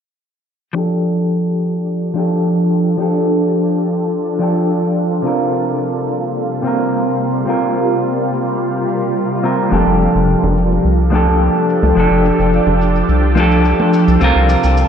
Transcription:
0.73 2.11 F3 medium
0.73 5.21 F3 medium
0.73 2.12 D4 medium
0.73 5.21 D4 medium
0.73 2.13 G4 medium
0.73 2.98 G4 medium
0.73 5.20 A4 medium
0.78 2.14 A4 medium
1.04 cabasa medium
1.19 cabasa soft
1.33 cabasa soft
1.61 cabasa medium
1.76 cabasa soft
1.89 cabasa soft
2.14 2.96 F3 medium
2.14 2.96 D4 medium
2.14 2.97 G4 medium
2.14 cabasa medium
2.18 2.98 A4 medium
2.32 cabasa soft
2.45 cabasa soft
2.73 cabasa medium
2.88 cabasa soft
2.97 4.35 F3 medium
2.97 4.36 D4 medium
2.97 5.22 F4 medium
2.97 4.37 G4 medium
2.97 cabasa soft
3.02 4.38 A4 medium
3.29 cabasa medium
3.43 cabasa soft
3.57 cabasa soft
3.84 cabasa medium
3.99 cabasa soft
4.13 cabasa soft
4.39 5.20 F3 medium
4.39 5.21 D4 medium
4.39 5.22 G4 medium
4.39 cabasa medium
4.43 5.22 A4 medium
4.55 cabasa soft
4.68 cabasa soft
4.96 cabasa medium
5.11 cabasa soft
5.22 6.60 C3 medium
5.22 9.68 C3 medium
5.22 9.69 G3 medium
5.22 9.69 A#3 medium
5.22 6.61 C4 medium
5.22 9.69 F4 medium
5.22 6.62 F4 medium
5.22 cabasa soft
5.27 6.62 A#4 medium
5.52 cabasa medium
5.67 cabasa soft
5.80 cabasa soft
6.09 cabasa medium
6.23 cabasa soft
6.37 cabasa soft
6.62 7.44 C3 medium
6.62 7.45 C4 medium
6.62 7.46 F4 medium
6.62 cabasa medium
6.67 7.47 A#4 medium
6.80 cabasa soft
6.93 cabasa soft
7.21 cabasa medium
7.35 cabasa soft
7.46 8.84 C3 medium
7.46 8.85 C4 medium
7.46 8.85 F4 medium
7.46 cabasa soft
7.50 8.86 A#4 medium
7.77 cabasa medium
7.92 cabasa soft
8.05 cabasa soft
8.33 cabasa medium
8.47 cabasa soft
8.61 cabasa soft
8.89 cabasa medium
9.04 cabasa soft
9.17 cabasa soft
9.43 9.69 C3 medium
9.43 9.69 C4 medium
9.43 9.69 F4 medium
9.43 9.70 A#4 medium
9.43 cabasa medium
9.60 cabasa soft
9.70 9.83 F1 medium
9.70 11.08 F3 medium
9.70 14.17 F3 medium
9.70 11.09 D4 medium
9.70 14.17 D4 medium
9.70 11.10 G4 medium
9.70 14.17 G4 medium
9.70 14.17 A4 medium
9.70 high conga medium
9.70 cabasa soft
9.74 11.10 A4 medium
9.86 10.08 F1 medium
10.01 cabasa medium
10.15 10.36 F1 medium
10.15 cabasa soft
10.29 cabasa soft
10.43 10.79 F1 medium
10.43 low conga medium
10.57 cabasa medium
10.72 cabasa soft
10.84 11.49 C2 medium
10.84 cabasa soft
11.10 11.92 F3 medium
11.10 11.93 D4 medium
11.10 11.94 G4 medium
11.10 high conga medium
11.10 cabasa medium
11.15 11.95 A4 medium
11.26 low conga medium
11.26 cabasa soft
11.42 cabasa soft
11.70 cabasa medium
11.83 11.93 C2 medium
11.83 high conga medium
11.83 cabasa soft
11.95 12.08 F1 medium
11.95 13.33 F3 medium
11.95 13.34 D4 medium
11.95 13.34 G4 medium
11.95 high conga soft
11.95 cabasa soft
12.00 13.35 A4 medium
12.10 12.32 F1 medium
12.25 cabasa medium
12.39 12.60 F1 medium
12.39 cabasa soft
12.53 cabasa soft
12.66 13.03 F1 medium
12.66 low conga medium
12.81 cabasa medium
12.96 cabasa soft
13.09 13.74 C2 medium
13.09 cabasa soft
13.35 14.17 F3 medium
13.35 14.18 D4 medium
13.35 14.19 G4 medium
13.35 high conga medium
13.35 cabasa medium
13.40 14.19 A4 medium
13.51 cabasa soft
13.65 cabasa soft
13.80 high conga medium
13.93 cabasa medium
14.08 14.18 C2 medium
14.08 cabasa soft
14.19 14.32 C2 medium
14.19 14.88 C3 medium
14.19 14.88 G3 medium
14.19 14.88 A#3 medium
14.19 14.88 C4 medium
14.19 14.88 F4 medium
14.19 high conga medium
14.19 cabasa soft
14.24 14.88 A#4 medium
14.36 14.56 C2 medium
14.49 cabasa medium
14.63 14.85 C2 medium
14.63 cabasa soft
14.77 cabasa soft

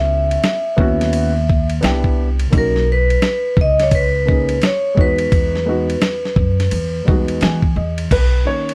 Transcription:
0.00 0.36 C#2 medium
0.00 0.52 B3 medium
0.00 0.53 C#4 medium
0.00 0.53 E4 medium
0.00 0.54 F#4 medium
0.00 1.68 E5 medium
0.31 ride soft
0.44 snare loud
0.44 hi-hat pedal soft
0.44 ride medium
0.77 1.79 D#2 medium
0.77 1.30 B3 medium
0.77 1.31 C#4 medium
0.77 1.31 E4 medium
0.77 1.32 F#4 medium
0.77 kick medium
1.01 snare soft
1.01 ride medium
1.13 ride medium
1.49 kick medium
1.70 ride medium
1.81 2.45 C2 loud
1.81 2.26 B3 medium
1.81 2.26 D4 medium
1.81 2.27 E4 medium
1.81 2.28 G4 medium
1.81 snare loud
1.81 hi-hat pedal soft
1.81 ride medium
2.04 kick medium
2.40 ride medium
2.50 3.15 B1 loud
2.50 2.79 A#3 medium
2.50 2.80 C#4 medium
2.50 2.80 D#4 medium
2.50 2.81 F#4 medium
2.50 kick medium
2.50 ride medium
2.58 2.88 A#4 medium
2.76 snare soft
2.92 3.56 B4 medium
3.10 ride medium
3.22 snare medium
3.22 hi-hat pedal soft
3.22 ride medium
3.57 4.58 C#2 medium
3.57 kick medium
3.61 3.82 D#5 loud
3.80 3.94 C#5 medium
3.80 snare soft
3.80 ride medium
3.91 4.60 B4 medium
3.91 kick medium
3.91 ride medium
4.25 4.54 A#3 medium
4.25 4.54 C#4 medium
4.25 4.55 D#4 medium
4.25 4.56 G#4 medium
4.25 kick medium
4.49 ride medium
4.62 5.00 C#5 loud
4.62 snare loud
4.62 hi-hat pedal soft
4.62 ride medium
4.94 5.28 E2 medium
4.94 5.55 G#3 medium
4.94 5.56 B3 medium
4.94 5.57 D#4 medium
4.94 kick medium
4.99 5.58 F#4 medium
4.99 7.39 B4 medium
5.18 ride medium
5.32 5.94 E2 medium
5.32 kick medium
5.32 ride medium
5.55 snare soft
5.65 5.93 G#3 medium
5.65 5.94 B3 medium
5.65 5.95 D#4 medium
5.65 5.95 F#4 medium
5.90 ride medium
6.02 snare loud
6.02 hi-hat pedal soft
6.02 ride medium
6.25 snare soft
6.36 6.67 F#2 medium
6.36 kick medium
6.60 snare soft
6.60 ride medium
6.71 7.03 E2 medium
6.71 ride medium
7.05 7.38 E2 medium
7.05 7.14 G3 medium
7.05 7.59 B3 medium
7.05 7.59 D#4 medium
7.05 7.60 F#4 medium
7.05 kick medium
7.11 7.61 G#3 medium
7.28 ride medium
7.41 7.72 E3 medium
7.41 7.74 G#5 medium
7.41 snare loud
7.41 hi-hat pedal soft
7.41 ride medium
7.62 kick medium
7.76 8.07 E2 medium
7.76 8.09 D#5 medium
7.98 ride medium
8.11 8.42 B1 loud
8.11 8.48 B4 medium
8.11 kick medium
8.11 crash medium
8.11 ride medium
8.45 8.74 D#3 soft
8.45 8.74 A#3 medium
8.45 8.74 C#4 medium
8.45 8.74 C#5 loud
8.69 ride medium

